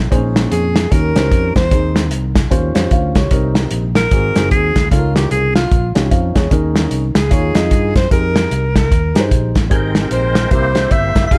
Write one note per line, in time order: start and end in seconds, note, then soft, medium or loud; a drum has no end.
0.11 0.46 A#1 medium
0.11 0.71 A#2 medium
0.11 0.17 C4 medium
0.11 0.62 D#4 medium
0.11 0.62 G#4 medium
0.11 0.62 C5 medium
0.11 kick medium
0.11 closed hi-hat medium
0.15 0.64 C#4 medium
0.36 snare loud
0.36 closed hi-hat medium
0.52 0.85 F2 medium
0.52 0.94 G#4 medium
0.52 closed hi-hat medium
0.76 snare loud
0.76 closed hi-hat medium
0.91 1.12 D#2 medium
0.91 1.52 D#3 medium
0.91 1.11 C#4 medium
0.91 1.11 D#4 medium
0.91 1.11 G4 medium
0.91 1.55 A#4 medium
0.91 1.11 A#4 medium
0.91 kick medium
0.91 closed hi-hat medium
1.15 1.29 C#2 medium
1.15 1.51 C#4 medium
1.15 1.52 D#4 medium
1.15 1.52 G4 medium
1.15 1.52 C5 medium
1.15 snare medium
1.15 closed hi-hat medium
1.32 1.52 F2 medium
1.32 kick medium
1.32 closed hi-hat medium
1.56 1.69 E2 medium
1.56 2.08 C5 loud
1.56 kick medium
1.56 snare medium
1.56 closed hi-hat medium
1.71 2.11 D#2 medium
1.71 2.32 D#3 medium
1.71 2.22 C4 medium
1.71 2.22 D#4 medium
1.71 2.22 G#4 medium
1.71 2.22 C5 medium
1.71 kick medium
1.71 closed hi-hat medium
1.96 snare medium
1.96 closed hi-hat medium
2.11 2.45 C2 medium
2.11 closed hi-hat medium
2.35 kick medium
2.35 snare loud
2.35 closed hi-hat medium
2.51 2.72 D#2 medium
2.51 3.11 D#3 medium
2.51 2.70 C#4 medium
2.51 2.71 F4 medium
2.51 2.71 G4 medium
2.51 2.71 C5 medium
2.51 kick medium
2.51 closed hi-hat medium
2.75 2.89 F2 medium
2.75 3.11 C#4 medium
2.75 3.11 F4 medium
2.75 2.91 G4 medium
2.75 2.91 C5 medium
2.75 snare medium
2.75 closed hi-hat medium
2.91 3.12 D2 medium
2.91 3.15 C5 soft
2.91 3.15 F5 medium
2.91 kick medium
2.91 closed hi-hat medium
3.15 3.29 C#2 medium
3.15 3.30 G4 medium
3.15 3.54 C#5 medium
3.15 kick medium
3.15 snare medium
3.15 closed hi-hat medium
3.31 3.65 C2 medium
3.31 3.91 C3 medium
3.31 3.82 C4 medium
3.31 3.82 D#4 medium
3.31 3.82 G4 medium
3.31 3.82 A#4 medium
3.31 kick medium
3.31 closed hi-hat medium
3.55 snare loud
3.55 closed hi-hat medium
3.71 4.05 A#1 medium
3.71 closed hi-hat medium
3.95 4.48 A#4 medium
3.95 snare loud
3.95 closed hi-hat medium
4.11 4.32 G#1 medium
4.11 4.72 G#2 soft
4.11 4.31 C4 medium
4.11 4.31 D#4 medium
4.11 4.31 F#4 medium
4.11 4.31 G#4 medium
4.11 kick medium
4.11 closed hi-hat medium
4.35 4.49 F#1 medium
4.35 4.71 C4 medium
4.35 4.71 D#4 medium
4.35 4.72 F#4 medium
4.35 4.72 G#4 medium
4.35 snare medium
4.35 closed hi-hat medium
4.51 4.72 D#2 medium
4.51 4.88 G#4 medium
4.51 kick medium
4.51 closed hi-hat medium
4.76 4.89 D2 medium
4.76 kick medium
4.76 snare medium
4.76 closed hi-hat medium
4.91 5.25 C#2 medium
4.91 5.52 C#3 medium
4.91 5.42 C#4 medium
4.91 5.42 D#4 medium
4.91 5.14 F4 medium
4.91 5.43 F4 medium
4.91 4.98 A4 medium
4.91 kick medium
4.91 closed hi-hat medium
4.97 5.45 A#4 medium
5.16 5.30 G4 medium
5.16 snare loud
5.16 closed hi-hat medium
5.31 5.65 C2 medium
5.31 5.54 G#4 medium
5.31 closed hi-hat medium
5.55 5.93 F4 medium
5.55 snare loud
5.55 closed hi-hat medium
5.71 5.92 A#1 medium
5.71 kick loud
5.71 closed hi-hat medium
5.95 6.09 C2 medium
5.95 6.31 C#4 medium
5.95 6.31 D#4 medium
5.95 6.32 F4 medium
5.95 6.11 G4 medium
5.95 snare loud
5.95 closed hi-hat medium
6.11 6.32 F2 medium
6.11 6.34 C5 soft
6.11 6.34 F5 medium
6.11 kick medium
6.11 closed hi-hat medium
6.35 6.49 E2 medium
6.35 6.50 G#4 medium
6.35 6.73 C#5 medium
6.35 kick medium
6.35 snare medium
6.35 closed hi-hat medium
6.51 6.85 D#2 loud
6.51 7.11 D#3 medium
6.51 7.02 C#4 medium
6.51 7.02 D#4 medium
6.51 7.02 G#4 medium
6.51 7.03 A#4 medium
6.51 kick medium
6.51 closed hi-hat medium
6.76 snare loud
6.76 closed hi-hat medium
6.91 7.12 C2 medium
6.91 closed hi-hat medium
7.15 7.28 C#2 medium
7.15 7.92 G#4 medium
7.15 snare loud
7.15 closed hi-hat medium
7.30 7.52 D#2 medium
7.30 7.91 D#3 medium
7.30 7.50 D#4 medium
7.30 7.50 F4 medium
7.30 7.51 G#4 medium
7.30 7.51 C#5 medium
7.30 kick medium
7.30 closed hi-hat medium
7.55 7.69 F2 medium
7.55 7.91 D#4 medium
7.55 7.91 F4 medium
7.55 7.91 G#4 medium
7.55 7.92 D#5 medium
7.55 snare medium
7.55 closed hi-hat medium
7.71 7.92 G2 medium
7.71 kick medium
7.71 closed hi-hat medium
7.96 8.09 F#2 medium
7.96 8.11 C5 medium
7.96 kick medium
7.96 snare medium
7.96 closed hi-hat medium
8.11 8.45 F2 medium
8.11 8.62 D#4 medium
8.11 8.62 G4 medium
8.11 8.62 G#4 medium
8.11 8.62 A#4 medium
8.11 8.72 A#4 medium
8.11 kick medium
8.11 closed hi-hat medium
8.36 snare loud
8.36 closed hi-hat medium
8.51 8.92 C2 medium
8.51 closed hi-hat medium
8.76 9.28 A#4 medium
8.76 kick medium
8.76 snare loud
8.76 closed hi-hat medium
8.92 9.12 D#2 medium
8.92 kick medium
8.92 closed hi-hat medium
9.15 9.29 G2 medium
9.15 9.51 D#4 medium
9.15 9.51 G4 medium
9.15 9.51 G#4 medium
9.15 9.19 B4 medium
9.15 snare medium
9.15 closed hi-hat medium
9.20 9.54 C5 medium
9.31 9.52 A#1 medium
9.31 kick medium
9.31 closed hi-hat medium
9.55 9.69 A1 medium
9.55 kick medium
9.55 snare medium
9.55 closed hi-hat medium
9.70 10.05 G#1 medium
9.70 10.31 G#2 medium
9.70 10.49 G#3 medium
9.70 10.21 C4 medium
9.70 10.49 C4 medium
9.70 10.22 G4 medium
9.70 10.22 G#4 medium
9.70 9.77 G#4 medium
9.70 10.22 A#4 medium
9.70 10.50 G5 medium
9.70 kick medium
9.70 closed hi-hat medium
9.76 10.52 A#4 medium
9.95 snare loud
9.95 closed hi-hat medium
10.11 10.45 A#1 medium
10.11 10.49 C5 medium
10.11 closed hi-hat medium
10.35 snare loud
10.35 closed hi-hat medium
10.50 10.85 C2 medium
10.50 11.11 C3 medium
10.50 11.29 A#3 medium
10.50 10.70 C4 medium
10.50 10.70 E4 medium
10.50 11.29 E4 medium
10.50 10.70 G4 medium
10.50 11.29 G4 medium
10.50 10.71 A#4 medium
10.50 11.29 C5 medium
10.50 10.93 C5 medium
10.50 kick medium
10.50 closed hi-hat medium
10.74 11.11 C4 medium
10.74 11.11 E4 medium
10.74 11.11 G4 medium
10.74 11.11 C5 medium
10.74 snare medium
10.74 closed hi-hat medium
10.91 11.12 G1 medium
10.91 11.26 E5 medium
10.91 kick medium
10.91 closed hi-hat medium
11.15 11.29 F#1 medium
11.15 kick medium
11.15 snare medium
11.15 closed hi-hat medium
11.27 11.38 D#4 medium
11.27 11.38 F4 medium
11.27 11.34 E5 medium
11.31 11.38 F1 loud
11.31 11.38 G#3 medium
11.31 11.38 F4 medium
11.31 11.38 G4 medium
11.31 11.38 G#4 medium
11.31 11.38 D#5 medium
11.31 11.38 F5 loud
11.31 11.38 G5 medium
11.31 kick medium
11.31 closed hi-hat medium